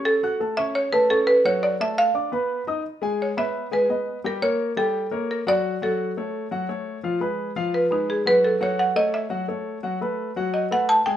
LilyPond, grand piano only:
\new Staff \with { instrumentName = "Grand piano" } { \time 4/4 \key fis \minor \tempo 4 = 172 <cis' cis'' cis'''>8 <fis' fis'' fis'''>8 <a a' a''>8 <cis' cis'' cis'''>4 <a a' a''>8 <cis' cis'' cis'''>4 | <fis fis' fis''>4 <a a' a''>4 <d' d'' d'''>8 <b b' b''>4 <dis' dis'' dis'''>8 | \key e \major r8 <gis gis' gis''>4 <b b' e''>4 <gis gis' gis''>8 <b b' dis''>4 | <g g' g''>8 <bes bes' cis''>4 <g g' g''>4 <bes bes' cis''>4 <fis fis' fis''>8~ |
<fis fis' fis''>8 <fis fis' fis''>4 <a a' cis''>4 <fis fis' fis''>8 <a a' cis''>4 | <f f' f''>8 <aes aes' ces''>4 <f f' f''>4 <aes aes' ces''>4 <fis fis' fis''>8~ | <fis fis' fis''>8 <fis fis' fis''>4 <a a' cis''>4 <fis fis' fis''>8 <a a' cis''>4 | <fis fis' fis''>8 <a a' b'>4 <fis fis' fis''>4 <a a' b'>4 <gis gis' gis''>8 | }